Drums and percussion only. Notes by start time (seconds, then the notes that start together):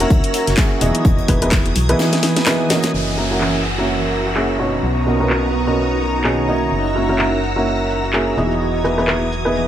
0.00 snare, closed hi-hat
0.10 kick, closed hi-hat
0.24 closed hi-hat
0.34 closed hi-hat, open hi-hat
0.47 snare, closed hi-hat
0.57 kick, snare, clap, closed hi-hat
0.81 closed hi-hat, open hi-hat
0.95 closed hi-hat
1.05 kick, closed hi-hat
1.18 closed hi-hat
1.28 kick, closed hi-hat, open hi-hat
1.42 closed hi-hat
1.51 kick, snare, clap, closed hi-hat
1.66 closed hi-hat
1.75 closed hi-hat, open hi-hat
1.89 closed hi-hat
1.99 snare, closed hi-hat
2.13 snare, closed hi-hat
2.23 snare, open hi-hat
2.36 snare, closed hi-hat
2.46 snare, clap, closed hi-hat
2.70 snare, closed hi-hat, open hi-hat
2.83 snare, closed hi-hat
2.94 closed hi-hat
3.17 snare
3.41 clap
3.64 closed hi-hat
3.78 snare
3.88 closed hi-hat
4.12 closed hi-hat, shaker
4.26 snare
4.35 clap, closed hi-hat
4.60 shaker
4.73 shaker
4.83 closed hi-hat, shaker
5.07 shaker
5.21 shaker
5.30 clap, closed hi-hat, shaker
5.54 shaker
5.68 shaker
5.77 closed hi-hat, shaker
6.01 closed hi-hat, shaker
6.15 shaker
6.24 clap, closed hi-hat, shaker
6.49 shaker
6.62 shaker
6.71 closed hi-hat, shaker
6.95 snare, shaker
7.09 shaker
7.19 clap, shaker
7.43 shaker
7.56 snare, shaker
7.66 closed hi-hat, shaker
7.89 closed hi-hat, shaker
8.03 snare, shaker
8.13 clap, shaker
8.37 closed hi-hat, shaker
8.51 shaker
8.60 closed hi-hat, shaker
8.85 shaker
8.98 shaker
9.07 clap, shaker
9.31 closed hi-hat, shaker
9.46 shaker
9.55 closed hi-hat, shaker